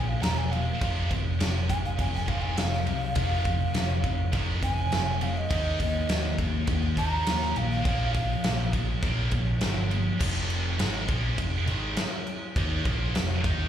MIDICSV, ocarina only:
0, 0, Header, 1, 2, 480
1, 0, Start_track
1, 0, Tempo, 587084
1, 669, Time_signature, 4, 2, 24, 8
1, 11189, End_track
2, 0, Start_track
2, 0, Title_t, "Ocarina"
2, 0, Program_c, 0, 79
2, 69, Note_on_c, 0, 77, 84
2, 180, Note_on_c, 0, 82, 95
2, 192, Note_off_c, 0, 77, 0
2, 307, Note_on_c, 0, 80, 94
2, 319, Note_off_c, 0, 82, 0
2, 421, Note_on_c, 0, 77, 96
2, 434, Note_off_c, 0, 80, 0
2, 890, Note_off_c, 0, 77, 0
2, 1385, Note_on_c, 0, 80, 123
2, 1498, Note_off_c, 0, 80, 0
2, 1513, Note_on_c, 0, 77, 90
2, 1622, Note_off_c, 0, 77, 0
2, 1633, Note_on_c, 0, 80, 92
2, 1742, Note_off_c, 0, 80, 0
2, 1753, Note_on_c, 0, 80, 98
2, 1868, Note_on_c, 0, 77, 90
2, 1880, Note_off_c, 0, 80, 0
2, 1973, Note_on_c, 0, 80, 100
2, 1986, Note_off_c, 0, 77, 0
2, 2105, Note_on_c, 0, 77, 127
2, 2117, Note_off_c, 0, 80, 0
2, 3512, Note_off_c, 0, 77, 0
2, 3787, Note_on_c, 0, 80, 108
2, 4273, Note_on_c, 0, 77, 88
2, 4286, Note_off_c, 0, 80, 0
2, 4394, Note_on_c, 0, 75, 101
2, 4407, Note_off_c, 0, 77, 0
2, 4738, Note_off_c, 0, 75, 0
2, 4755, Note_on_c, 0, 75, 112
2, 5215, Note_off_c, 0, 75, 0
2, 5703, Note_on_c, 0, 82, 101
2, 6193, Note_on_c, 0, 77, 91
2, 6206, Note_off_c, 0, 82, 0
2, 6297, Note_off_c, 0, 77, 0
2, 6301, Note_on_c, 0, 77, 89
2, 6652, Note_off_c, 0, 77, 0
2, 6663, Note_on_c, 0, 77, 105
2, 7129, Note_off_c, 0, 77, 0
2, 11189, End_track
0, 0, End_of_file